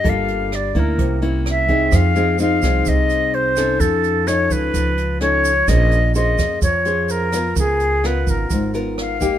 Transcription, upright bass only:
\new Staff \with { instrumentName = "Upright bass" } { \clef bass \time 4/4 \key f \minor \tempo 4 = 128 g,,4. d,8 c,2 | f,4. c,8 c,2 | f,4. cis,8 cis,2 | bes,,4. f,8 f,2 |
des,4. aes,,8 aes,,2 | }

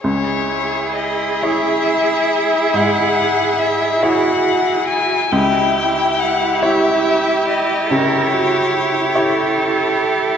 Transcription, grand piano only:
\new Staff \with { instrumentName = "Grand piano" } { \time 12/8 \key cis \minor \tempo 4. = 46 cis,4. <e' gis' cis''>4. gis,4. <e' gis' cis''>4. | cis,4. <e' g' cis''>4. cis4. <e' g' cis''>4. | }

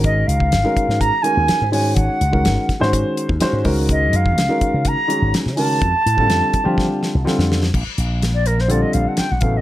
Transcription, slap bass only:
\new Staff \with { instrumentName = "Slap bass" } { \clef bass \time 4/4 \key f \dorian \tempo 4 = 125 aes,,8 des,8 aes,,16 r8 aes,8 r8 ees,16 r16 aes,8. | aes,,16 r16 des,8 aes,,16 r8 aes,8 r8 ees,16 r16 aes,16 des,8~ | des,8 ges,8 des,16 r8 des8 r8 aes,,16 r16 des8. | f,16 r16 a,8 f,16 r8 f8 r8 c,16 r16 f,8. |
\key bes \major bes,,16 r16 bes,,2 bes,,16 r8 bes,,16 a,,8 | }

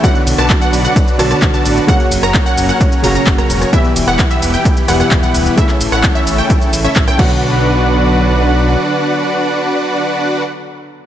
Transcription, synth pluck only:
\new Staff \with { instrumentName = "Synth pluck" } { \time 4/4 \key b \minor \tempo 4 = 130 fis''8 r16 a''8 fis''8 fis''8. a''16 a''8 a''8. | fis''8 r16 ais''8 fis''8 fis''8. ais''16 ais''8 ais''8. | e''8 r16 fis''8 e''8 g''8. fis''16 fis''8 fis''8. | e''8 r16 fis''8 e''8 g''8. r16 e''8 g''16 fis''8~ |
fis''1~ | fis''1 | }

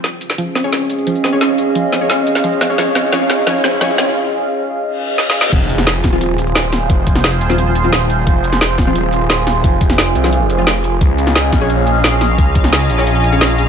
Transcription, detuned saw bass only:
\new Staff \with { instrumentName = "Detuned saw bass" } { \clef bass \time 4/4 \key f \minor \tempo 4 = 175 r1 | r1 | r1 | r1 |
f,,4. ees,,2~ ees,,8 | f,,4. ees,,2~ ees,,8 | f,,4. ees,,2~ ees,,8 | f,,4. c,4 f,,4. |
des,4. bes,,2~ bes,,8 | des,4. bes,,2~ bes,,8 | }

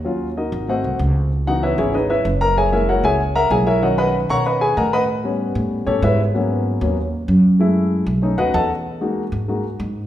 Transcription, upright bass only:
\new Staff \with { instrumentName = "Upright bass" } { \clef bass \time 4/4 \key e \lydian \tempo 4 = 191 dis,4. gis,,4 bis,,8 cis,4~ | cis,4. gis,,4. fis,,4~ | fis,,4. cis,4. b,,4~ | b,,4. b,4. a,4~ |
a,4. a,4 a,8 gis,4~ | gis,4. dis,4. fis,4~ | fis,4. b,,4 dis,8 e,4~ | e,4. gis,4. gis,4 | }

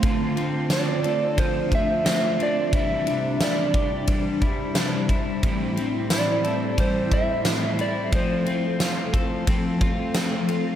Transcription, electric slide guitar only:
\new Staff \with { instrumentName = "Electric slide guitar" } { \time 4/4 \key c \major \tempo 4 = 89 r4 d''4 c''8 e''4 d''8 | e''4 d''4. r4. | r4 d''4 c''8 e''4 d''8 | c''2. r4 | }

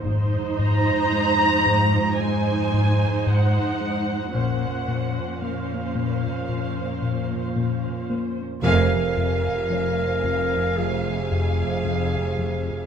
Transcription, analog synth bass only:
\new Staff \with { instrumentName = "Analog synth bass" } { \clef bass \time 4/4 \key f \phrygian \tempo 4 = 56 aes,8 aes,8 aes8 aes,8 aes,8 aes,8 aes,8 aes8 | bes,8 bes,8 bes8 bes,8 bes,8 bes,8 bes,8 bes8 | f,8 f,8 f8 f,8 f8 f,8 f,8 f,8 | }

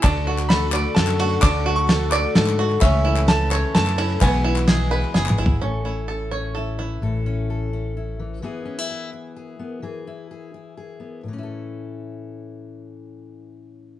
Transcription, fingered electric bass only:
\new Staff \with { instrumentName = "Fingered electric bass" } { \clef bass \time 3/4 \key a \major \tempo 4 = 128 d,2 fis,4 | d,2 gis,4 | cis,2 fis,4 | b,,2 fis,,8 gis,,8 |
a,,2. | a,,2. | r2. | r2. |
r2. | r2. | }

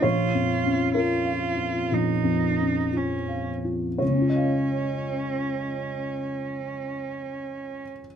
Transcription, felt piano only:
\new Staff \with { instrumentName = "Felt piano" } { \time 4/4 \key des \major \tempo 4 = 57 << { des''4 bes'2 r4 | <des, des des' f' des'' ees'' f''>1 | } \\ { \tuplet 3/2 { bes,,8 f,8 des'8 f'8 f''8 f'8 bes,,8 f,8 des'8 f'8 f''8 f'8 } | r1 | } >> }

